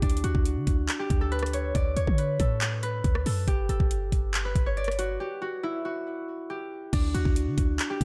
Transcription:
0.00 0.23 D2 loud
0.00 1.59 D4 loud
0.00 1.34 E4 medium
0.00 0.30 G4 medium
0.00 kick loud
0.00 closed hi-hat medium
0.10 closed hi-hat medium
0.17 closed hi-hat medium
0.24 0.34 D2 loud
0.24 1.05 F#4 medium
0.24 closed hi-hat medium
0.35 0.58 D2 loud
0.35 kick loud
0.45 closed hi-hat medium
0.56 0.67 D3 loud
0.67 0.88 D2 loud
0.67 kick medium
0.67 closed hi-hat medium
0.89 clap loud
0.89 closed hi-hat medium
0.99 3.35 G4 medium
1.10 1.72 D2 loud
1.10 kick loud
1.10 closed hi-hat medium
1.21 2.39 A4 medium
1.32 2.18 B4 medium
1.32 closed hi-hat soft
1.39 cross-stick medium
1.39 closed hi-hat soft
1.46 closed hi-hat medium
1.53 1.81 C#5 medium
1.53 closed hi-hat medium
1.75 1.96 D2 loud
1.75 2.02 D5 medium
1.75 kick loud
1.75 closed hi-hat medium
1.96 2.07 D2 loud
1.96 3.88 C#5 medium
1.96 closed hi-hat medium
2.07 2.38 D3 loud
2.07 kick loud
2.18 2.83 B4 medium
2.18 closed hi-hat medium
2.40 3.02 A2 loud
2.40 3.26 A4 medium
2.40 kick medium
2.40 closed hi-hat medium
2.61 clap loud
2.61 closed hi-hat medium
2.83 4.45 B4 medium
2.83 closed hi-hat medium
3.04 3.25 D2 loud
3.04 kick medium
3.04 closed hi-hat medium
3.15 cross-stick medium
3.26 3.47 F#2 loud
3.26 3.69 A4 medium
3.26 open hi-hat medium
3.48 3.68 G1 loud
3.48 5.05 G4 loud
3.48 kick loud
3.48 closed hi-hat medium
3.69 3.80 G1 loud
3.69 5.89 A4 medium
3.69 closed hi-hat medium
3.80 4.11 G1 loud
3.80 kick loud
3.91 closed hi-hat medium
4.12 4.54 G1 loud
4.12 kick medium
4.12 closed hi-hat medium
4.34 clap loud
4.34 closed hi-hat medium
4.45 6.50 B4 medium
4.56 5.18 G1 loud
4.56 kick loud
4.56 closed hi-hat medium
4.66 4.83 C#5 medium
4.77 6.62 D5 medium
4.77 closed hi-hat soft
4.84 cross-stick medium
4.84 closed hi-hat medium
4.92 closed hi-hat medium
4.99 5.26 F#4 medium
4.99 closed hi-hat medium
5.20 5.48 G4 medium
5.42 5.85 F#4 medium
5.63 8.04 E4 medium
5.85 6.56 F#4 medium
6.50 7.20 G4 medium
6.93 7.14 D2 loud
6.93 8.04 D4 loud
6.93 kick loud
6.93 closed hi-hat medium
6.93 crash loud
7.14 7.25 D2 loud
7.14 7.96 F#4 medium
7.14 closed hi-hat medium
7.25 7.48 D2 loud
7.25 kick loud
7.36 closed hi-hat medium
7.47 7.57 D3 loud
7.58 7.78 D2 loud
7.58 kick medium
7.58 closed hi-hat medium
7.79 clap loud
7.79 closed hi-hat medium
7.90 8.04 G4 medium
8.01 8.04 D2 loud
8.01 kick loud
8.01 closed hi-hat medium

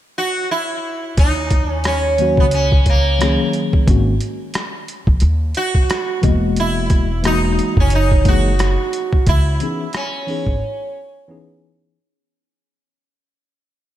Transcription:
0.18 0.51 F#4 medium
0.51 1.19 E4 medium
1.17 2.34 D#2 medium
1.17 1.71 D#4 medium
1.17 kick loud
1.17 closed hi-hat medium
1.50 kick medium
1.50 closed hi-hat medium
1.71 1.86 C#4 medium
1.84 2.35 C#4 medium
1.84 cross-stick loud
1.84 closed hi-hat medium
2.18 2.44 D#3 medium
2.18 2.44 F#3 medium
2.18 2.45 A#3 medium
2.18 2.45 C#4 medium
2.18 2.46 F#4 medium
2.18 closed hi-hat medium
2.37 3.35 C#2 medium
2.37 2.45 B3 medium
2.37 kick medium
2.51 2.85 C#4 medium
2.51 closed hi-hat medium
2.72 kick medium
2.86 3.51 A#3 medium
2.86 kick medium
2.86 closed hi-hat medium
3.19 3.85 D#3 medium
3.19 3.88 F#3 medium
3.19 3.87 A#3 medium
3.19 3.88 C#4 medium
3.19 3.89 G#4 medium
3.19 cross-stick loud
3.19 closed hi-hat medium
3.53 closed hi-hat medium
3.73 kick medium
3.86 4.17 G#1 medium
3.86 4.12 D#3 medium
3.86 4.12 G#3 medium
3.86 4.13 A#3 medium
3.86 4.13 C#4 medium
3.86 4.14 F#4 medium
3.86 kick loud
3.86 closed hi-hat medium
4.21 closed hi-hat medium
4.54 cross-stick loud
4.54 closed hi-hat medium
4.88 closed hi-hat medium
5.07 5.20 A#1 medium
5.07 kick medium
5.20 5.51 D#2 medium
5.20 closed hi-hat medium
5.55 6.20 F#4 medium
5.55 closed hi-hat medium
5.75 kick medium
5.90 cross-stick loud
5.90 closed hi-hat medium
6.22 7.57 E1 medium
6.22 7.05 E3 medium
6.22 6.31 G3 medium
6.22 7.06 A#3 medium
6.22 7.07 F#4 medium
6.22 7.07 D#5 medium
6.22 kick medium
6.22 closed hi-hat medium
6.29 7.09 G#3 medium
6.56 7.26 E4 medium
6.56 closed hi-hat medium
6.90 kick medium
6.90 closed hi-hat medium
7.22 7.73 E3 medium
7.22 7.73 G#3 medium
7.22 7.74 A#3 medium
7.22 7.74 D#4 medium
7.22 7.75 F#4 medium
7.22 cross-stick medium
7.22 closed hi-hat medium
7.26 7.75 D#4 medium
7.59 closed hi-hat medium
7.77 8.74 F#1 medium
7.77 7.94 C#4 medium
7.77 kick medium
7.90 closed hi-hat medium
7.95 8.28 D#4 medium
8.11 kick medium
8.24 8.50 E3 medium
8.24 8.51 G#3 medium
8.24 8.51 A#3 medium
8.24 8.52 D#4 medium
8.24 9.28 F#4 loud
8.24 8.52 G#4 medium
8.24 kick medium
8.24 closed hi-hat medium
8.59 cross-stick loud
8.59 closed hi-hat loud
8.93 closed hi-hat medium
9.13 kick medium
9.27 9.56 C#2 medium
9.27 9.91 E4 medium
9.27 kick loud
9.27 closed hi-hat medium
9.60 9.85 E3 medium
9.60 9.86 B3 medium
9.60 9.86 C#4 medium
9.60 9.87 D#4 medium
9.60 9.87 G#4 medium
9.60 closed hi-hat medium
9.93 11.26 C#4 medium
9.93 cross-stick loud
9.93 closed hi-hat medium
10.27 10.53 E3 medium
10.27 10.53 B3 medium
10.27 10.54 C#4 medium
10.27 10.54 D#4 medium
10.27 10.54 G#4 medium
10.27 open hi-hat soft
10.46 10.59 G#1 medium
10.46 kick medium
11.28 11.96 E3 medium
11.28 11.96 B3 medium
11.28 11.97 C#4 medium
11.28 11.97 D#4 medium
11.28 11.98 G#4 loud

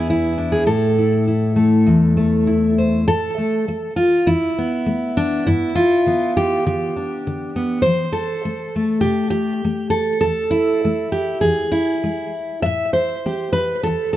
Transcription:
0.00 0.67 E2 medium
0.00 0.63 B3 medium
0.00 0.36 D4 soft
0.00 0.38 G#4 medium
0.10 0.68 E4 medium
0.38 0.63 D4 soft
0.52 0.66 G#4 medium
0.67 1.87 A2 medium
0.67 3.06 A4 medium
0.98 1.26 E4 soft
1.27 2.46 E4 soft
1.56 2.16 A3 medium
1.86 3.08 E2 medium
2.17 3.04 A3 medium
2.47 3.04 E4 soft
2.78 3.04 C5 soft
3.07 3.62 A2 medium
3.07 3.96 A4 loud
3.38 3.67 A3 soft
3.68 4.22 A3 medium
3.96 4.27 F4 loud
4.27 4.81 E2 medium
4.27 5.45 E4 medium
4.58 5.75 B3 soft
4.86 5.41 A3 medium
5.17 5.47 D4 medium
5.47 6.01 G2 medium
5.47 6.36 E4 loud
5.75 6.95 F4 medium
6.06 6.60 D3 medium
6.06 7.55 B3 soft
6.37 6.65 G4 medium
6.66 7.20 D3 medium
6.66 7.82 G4 medium
6.96 7.82 D4 soft
7.27 7.80 D3 medium
7.56 7.82 B3 medium
7.82 8.39 F3 medium
7.82 8.73 C5 loud
8.12 9.00 A4 loud
8.45 8.75 A3 medium
8.76 9.63 A3 soft
9.01 9.58 C3 medium
9.01 9.29 G4 loud
9.30 9.90 G4 loud
9.65 10.18 A3 medium
9.90 10.20 A4 medium
10.21 10.78 E2 medium
10.21 11.12 A4 loud
10.51 11.42 E4 medium
10.85 11.38 A3 medium
11.12 11.41 G4 medium
11.41 11.98 E2 medium
11.41 12.33 G#4 medium
11.72 12.62 E4 medium
12.04 12.59 G#3 medium
12.62 13.20 A2 medium
12.62 12.93 E5 loud
12.93 14.15 C5 loud
13.26 13.80 C4 medium
13.26 13.52 G4 soft
13.53 13.83 B4 loud
13.83 14.17 E2 medium
13.83 14.12 A4 loud
14.13 14.17 A4 medium

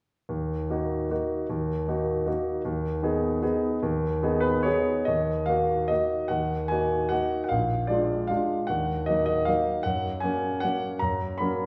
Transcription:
0.29 0.69 D#2 soft
0.70 1.07 A#3 soft
0.70 1.07 D#4 soft
0.70 1.07 F#4 soft
1.10 1.46 A#3 soft
1.10 1.46 D#4 soft
1.10 1.46 F#4 soft
1.50 1.87 D#2 soft
1.88 2.23 A#3 soft
1.88 2.23 D#4 soft
1.88 2.24 F#4 soft
2.26 2.61 A#3 soft
2.26 2.61 D#4 soft
2.26 2.61 F#4 soft
2.65 3.01 D#2 soft
3.03 3.38 B3 soft
3.03 3.38 D#4 soft
3.03 3.39 G#4 soft
3.42 3.79 B3 soft
3.42 3.79 D#4 soft
3.42 3.79 G#4 soft
3.83 4.22 D#2 soft
4.23 4.62 B3 soft
4.23 4.62 D#4 soft
4.23 4.62 G#4 soft
4.40 4.64 B4 medium
4.63 5.04 B3 soft
4.63 5.04 D#4 soft
4.63 5.04 G#4 soft
4.63 5.07 C#5 medium
5.05 5.47 D#2 soft
5.05 5.47 D#5 medium
5.46 5.86 A#3 soft
5.46 5.86 D#4 soft
5.46 5.87 F#4 soft
5.46 5.89 F5 medium
5.88 6.27 A#3 soft
5.88 6.27 D#4 soft
5.88 6.27 F#4 soft
5.88 6.29 D#5 medium
6.28 6.69 D#2 soft
6.28 6.69 F#5 medium
6.68 7.07 A#3 soft
6.68 7.08 D#4 soft
6.68 7.08 F#4 soft
6.68 7.10 G#5 medium
7.09 7.46 A#3 soft
7.09 7.47 D#4 soft
7.09 7.47 F#4 soft
7.09 7.42 F#5 medium
7.44 7.51 F#5 soft
7.49 7.89 A#1 soft
7.49 7.89 F5 medium
7.87 8.26 G#3 soft
7.87 8.26 D4 soft
7.87 8.26 F4 soft
7.87 8.28 D5 medium
8.27 8.65 G#3 soft
8.27 8.65 D4 soft
8.27 8.65 F4 soft
8.27 8.68 F5 medium
8.67 9.07 D#2 soft
8.67 9.07 F#5 medium
9.06 9.44 F#3 soft
9.06 9.44 A#3 soft
9.06 9.44 D#4 soft
9.06 9.24 D#5 medium
9.26 9.46 D#5 medium
9.45 9.81 F#3 soft
9.45 9.82 A#3 soft
9.45 9.82 D#4 soft
9.45 9.84 F5 medium
9.83 10.22 F#2 soft
9.83 10.22 F#5 medium
10.20 10.59 F#3 soft
10.20 10.59 A#3 soft
10.20 10.59 C#4 soft
10.20 10.61 G#5 medium
10.60 10.98 F#3 soft
10.60 10.98 A#3 soft
10.60 10.99 C#4 soft
10.60 11.01 F#5 medium
10.99 11.39 F#2 soft
10.99 11.39 A#5 medium
11.38 11.66 F#3 soft
11.38 11.66 A#3 soft
11.38 11.66 C#4 soft
11.38 11.66 B5 medium

